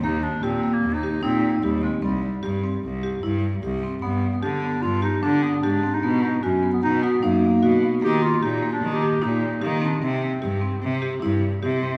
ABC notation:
X:1
M:5/4
L:1/16
Q:1/4=150
K:Eb
V:1 name="Marimba"
B,4 G2 B,4 G2 E4 G2 C2 | C4 G2 C4 G2 =E4 G2 C2 | =B,4 G2 B,4 G2 D4 G2 C2 | =B,4 ^F2 B,4 F2 ^D4 F2 B,2 |
B,4 G2 B,4 G2 E4 G2 C2 | C4 G2 C4 G2 =E4 G2 C2 |]
V:2 name="Clarinet"
E2 D2 C3 B,2 E3 C4 G,2 A,2 | G,2 G,8 z8 z2 | =B,3 B, D4 F2 E2 D2 B,2 D3 E- | E2 ^D2 _D3 =B, ^D2 B,2 _B,6 z2 |
G2 F2 E3 D2 G3 E4 B,2 D2 | C2 C8 z8 z2 |]
V:3 name="Cello" clef=bass
E,,4 B,,4 E,,4 B,,4 E,,4 | C,,4 G,,4 C,,4 G,,4 C,,4 | G,,4 D,4 G,,4 D,4 A,,4 | =B,,4 ^F,,4 B,,4 F,,4 B,,4 |
E,4 B,,4 E,4 B,,4 E,4 | C,4 G,,4 C,4 G,,4 C,4 |]